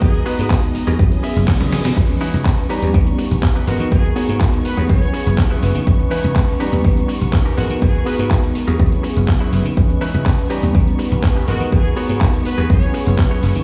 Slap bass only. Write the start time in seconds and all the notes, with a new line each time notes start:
0.02 G#2
0.39 G#2
0.75 muted slap bass stroke
0.87 D#2
0.99 F#2
1.36 F#1
1.60 C#2
1.72 muted slap bass stroke
1.85 B2
1.97 C#2
2.34 C#2
2.82 D#2
2.94 B2
3.31 A#1
3.67 G#1
3.80 D#3
3.92 G#2
4.29 G#2
4.65 muted slap bass stroke
4.77 D#2
4.89 F#2
5.27 F#1
5.63 F#1
5.75 D#3
5.87 C#2
6.24 C#2
6.73 D#2
6.84 B2
7.21 A#1
7.58 G#1
7.70 D#3
7.82 G#2
8.19 G#2
8.55 muted slap bass stroke
8.68 D#2
8.79 F#2
9.17 F#1
9.53 F#1
9.65 D#3
9.77 C#2
10.14 C#2
10.63 D#2
10.75 B2
11.12 A#1
11.48 G#1
11.61 D#3
11.72 G#2
12.09 G#2
12.45 muted slap bass stroke
12.58 D#2
12.70 F#2
13.07 F#1
13.43 F#1
13.55 D#3